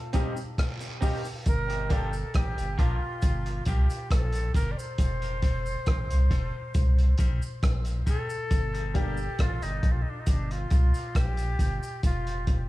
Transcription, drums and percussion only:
0.13 kick loud
0.13 closed hi-hat medium
0.13 cabasa medium
0.37 cabasa medium
0.58 kick loud
0.58 cross-stick loud
0.58 closed hi-hat medium
0.58 cabasa medium
0.58 long guiro medium
0.80 closed hi-hat soft
0.80 cabasa soft
1.02 kick medium
1.02 open hi-hat medium
1.02 cabasa medium
1.25 cabasa medium
1.46 kick loud
1.46 closed hi-hat medium
1.46 cabasa medium
1.70 closed hi-hat soft
1.90 kick medium
1.90 closed hi-hat medium
2.13 cabasa medium
2.34 kick loud
2.34 cross-stick loud
2.34 closed hi-hat medium
2.58 closed hi-hat soft
2.58 cabasa soft
2.79 kick medium
2.79 closed hi-hat medium
3.22 kick loud
3.22 closed hi-hat medium
3.22 cabasa medium
3.46 closed hi-hat soft
3.65 kick medium
3.65 closed hi-hat medium
3.65 cabasa medium
3.90 closed hi-hat soft
3.90 cabasa medium
4.11 kick medium
4.11 cross-stick loud
4.11 closed hi-hat medium
4.11 cabasa medium
4.32 closed hi-hat soft
4.32 cabasa medium
4.54 kick medium
4.54 closed hi-hat medium
4.54 cabasa medium
4.79 cabasa medium
4.98 kick loud
4.98 closed hi-hat medium
4.98 cabasa medium
5.22 closed hi-hat soft
5.42 kick medium
5.42 closed hi-hat medium
5.66 cabasa medium
5.86 kick loud
5.86 cross-stick loud
5.86 closed hi-hat medium
6.10 closed hi-hat medium
6.10 cabasa soft
6.31 kick loud
6.31 closed hi-hat medium
6.74 kick loud
6.74 closed hi-hat medium
6.74 cabasa medium
6.98 closed hi-hat soft
7.18 kick medium
7.18 closed hi-hat medium
7.18 cabasa medium
7.42 cabasa medium
7.63 kick loud
7.63 cross-stick loud
7.63 closed hi-hat medium
7.63 cabasa medium
7.85 closed hi-hat soft
7.85 cabasa medium
8.07 kick medium
8.07 closed hi-hat medium
8.07 cabasa medium
8.30 cabasa medium
8.51 kick loud
8.51 closed hi-hat medium
8.51 cabasa medium
8.74 closed hi-hat soft
8.95 kick loud
8.95 closed hi-hat medium
9.17 cabasa medium
9.39 kick loud
9.39 cross-stick loud
9.39 closed hi-hat medium
9.62 closed hi-hat medium
9.62 cabasa soft
9.83 kick medium
9.83 closed hi-hat medium
10.26 kick loud
10.26 closed hi-hat medium
10.26 cabasa medium
10.51 closed hi-hat soft
10.70 kick loud
10.70 closed hi-hat medium
10.70 cabasa medium
10.94 closed hi-hat soft
10.94 cabasa medium
11.15 kick loud
11.15 cross-stick loud
11.15 closed hi-hat medium
11.15 cabasa medium
11.37 closed hi-hat soft
11.37 cabasa medium
11.59 kick medium
11.59 closed hi-hat medium
11.59 cabasa medium
11.83 cabasa medium
12.03 kick loud
12.03 closed hi-hat medium
12.03 cabasa medium
12.27 closed hi-hat soft
12.47 kick loud
12.47 closed hi-hat medium

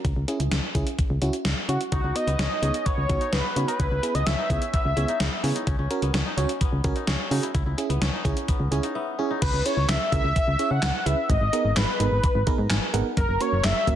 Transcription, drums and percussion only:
0.05 kick loud
0.05 closed hi-hat medium
0.28 closed hi-hat medium
0.40 closed hi-hat medium
0.52 snare loud
0.52 closed hi-hat medium
0.75 kick medium
0.75 closed hi-hat medium
0.87 closed hi-hat medium
0.99 kick medium
0.99 closed hi-hat medium
1.22 closed hi-hat medium
1.33 closed hi-hat soft
1.45 snare loud
1.45 closed hi-hat medium
1.69 closed hi-hat medium
1.81 closed hi-hat medium
1.92 kick loud
1.92 closed hi-hat medium
2.16 closed hi-hat medium
2.28 closed hi-hat medium
2.39 snare loud
2.39 closed hi-hat medium
2.63 closed hi-hat medium
2.74 closed hi-hat medium
2.86 kick medium
2.86 closed hi-hat medium
3.09 kick medium
3.09 closed hi-hat medium
3.21 closed hi-hat soft
3.33 snare loud
3.33 closed hi-hat medium
3.56 closed hi-hat medium
3.68 closed hi-hat medium
3.80 kick loud
3.80 closed hi-hat medium
4.03 closed hi-hat medium
4.15 closed hi-hat soft
4.27 snare loud
4.27 closed hi-hat medium
4.50 kick medium
4.50 closed hi-hat medium
4.62 closed hi-hat medium
4.74 kick medium
4.74 closed hi-hat medium
4.97 closed hi-hat medium
5.08 closed hi-hat soft
5.20 snare loud
5.20 closed hi-hat medium
5.44 open hi-hat medium
5.56 closed hi-hat medium
5.67 kick loud
5.67 closed hi-hat medium
5.91 closed hi-hat medium
6.02 closed hi-hat medium
6.14 snare loud
6.14 closed hi-hat medium
6.38 closed hi-hat medium
6.49 closed hi-hat medium
6.61 kick medium
6.61 closed hi-hat medium
6.84 kick medium
6.84 closed hi-hat medium
6.96 closed hi-hat soft
7.07 snare loud
7.07 closed hi-hat medium
7.31 open hi-hat medium
7.43 closed hi-hat medium
7.55 kick loud
7.55 closed hi-hat medium
7.78 closed hi-hat medium
7.90 closed hi-hat medium
8.02 snare loud
8.02 closed hi-hat medium
8.25 kick medium
8.25 closed hi-hat medium
8.37 closed hi-hat medium
8.48 kick medium
8.48 closed hi-hat medium
8.72 closed hi-hat medium
8.83 closed hi-hat soft
9.42 kick loud
9.42 closed hi-hat medium
9.42 crash loud
9.66 closed hi-hat medium
9.89 snare loud
9.89 clap medium
9.89 closed hi-hat medium
10.12 kick medium
10.12 closed hi-hat medium
10.36 kick medium
10.36 closed hi-hat medium
10.59 closed hi-hat medium
10.82 snare loud
10.82 clap loud
10.82 closed hi-hat medium
11.06 closed hi-hat medium
11.30 kick loud
11.30 closed hi-hat medium
11.53 closed hi-hat medium
11.76 snare loud
11.76 clap medium
11.76 closed hi-hat medium
12.00 closed hi-hat medium
12.24 kick medium
12.24 closed hi-hat medium
12.47 kick loud
12.47 closed hi-hat medium
12.70 snare loud
12.70 clap medium
12.70 closed hi-hat medium
12.94 closed hi-hat medium
13.17 kick loud
13.17 closed hi-hat medium
13.41 closed hi-hat medium
13.64 snare loud
13.64 clap medium
13.64 closed hi-hat medium
13.87 kick medium
13.87 closed hi-hat medium

